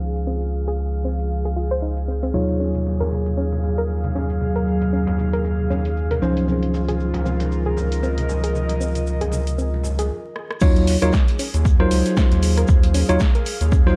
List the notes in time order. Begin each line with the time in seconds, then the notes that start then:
Already playing: C#2 F3 C#4 D#4 F4 G#4 C5 F5
0.02 shaker
0.16 closed hi-hat, shaker
0.27 C4, shaker
0.42 closed hi-hat
0.54 shaker
0.68 G#4, closed hi-hat, shaker
0.80 shaker
0.94 closed hi-hat
1.05 C4, shaker
1.20 closed hi-hat, shaker
1.31 shaker
1.45 G#4, closed hi-hat
1.56 F4, shaker
1.71 C5, closed hi-hat, shaker
1.82 D#4, shaker
1.97 closed hi-hat
2.08 C4, shaker
2.23 C4, closed hi-hat, shaker
2.34 D#2 F#3 D#4 F4 G#4 C#5, high conga, shaker
2.49 closed hi-hat
2.60 C#4, high bongo, shaker
2.75 closed hi-hat, high conga, shaker
2.86 high bongo, shaker
3.00 A#4, closed hi-hat, low conga
3.11 F5, high conga, shaker
3.26 closed hi-hat, high bongo, shaker
3.37 C#4, shaker
3.52 high bongo, high conga
3.63 low conga, shaker
3.78 A#4, closed hi-hat, shaker
3.90 high bongo, shaker
4.04 closed hi-hat, high conga
4.15 C#4, high bongo, low conga, shaker
4.30 closed hi-hat, shaker
4.40 high conga, shaker
4.55 A#4, closed hi-hat, high bongo
4.67 shaker
4.81 closed hi-hat, high bongo, high conga, shaker
4.93 C#4, shaker
5.07 closed hi-hat, low conga
5.19 high bongo, high conga, shaker
5.33 A#4, closed hi-hat, shaker
5.45 high bongo, shaker
5.60 high conga
5.70 C#4, low conga, shaker
5.85 closed hi-hat, high bongo, shaker
5.97 shaker
6.11 A#4, closed hi-hat, high bongo, high conga
6.22 C#2 F3 C#4 D#4 F4 C5, low conga, shaker
6.37 closed hi-hat, shaker
6.48 C4, high bongo, high conga, shaker
6.63 closed hi-hat
6.74 high bongo, shaker
6.88 G#4, closed hi-hat, high conga, shaker
7.00 A#4, shaker
7.14 closed hi-hat, high bongo, low conga
7.25 C4, high conga, shaker
7.40 closed hi-hat, high bongo, shaker
7.52 shaker
7.65 G#4, high conga
7.77 high bongo, low conga, shaker
7.81 D#5
7.92 closed hi-hat, shaker
8.03 C4, high bongo, shaker
8.18 closed hi-hat, high conga
8.29 low conga, shaker
8.44 G#4, closed hi-hat, high bongo, shaker
8.55 high conga, shaker
8.69 closed hi-hat, high bongo
8.81 C4, shaker
8.95 closed hi-hat, high conga, shaker
9.07 high bongo, shaker
9.21 G#4, closed hi-hat, low conga
9.32 high bongo, high conga, shaker
9.47 closed hi-hat, shaker
9.58 C4, shaker
9.74 high bongo, high conga
9.83 low conga, shaker
9.99 G#4, closed hi-hat, high bongo, shaker
10.36 cross-stick
10.51 cross-stick
10.61 D#2 F#3 C#4 D#4 F4 G#4 C#5, kick, crash, shaker
10.76 closed hi-hat
10.87 snare, open hi-hat, shaker
11.02 D#2 F#3 D#4 F4 A#4 C#5, closed hi-hat, shaker
11.13 kick, snare, shaker
11.28 closed hi-hat
11.39 C#4, open hi-hat, shaker
11.54 D#2, closed hi-hat, shaker
11.65 F5, kick, shaker
11.80 F#3 D#4 F4 A#4 C5, cross-stick
11.91 C#2, open hi-hat, shaker
12.06 snare, closed hi-hat, shaker
12.17 C#4, kick, snare, shaker
12.31 D#2, snare, closed hi-hat
12.43 open hi-hat, shaker
12.57 A#4, cross-stick, closed hi-hat, shaker
12.68 D#2, kick, shaker
12.83 closed hi-hat
12.94 C#4, open hi-hat, shaker
13.09 D#2 F#3 D#4 F4 C#5, closed hi-hat, shaker
13.20 kick, snare, shaker
13.35 A#4, closed hi-hat
13.46 open hi-hat, shaker
13.61 D#2, closed hi-hat, shaker
13.72 C#4, kick, shaker
13.87 F#3 D#4 F4 C5, cross-stick, snare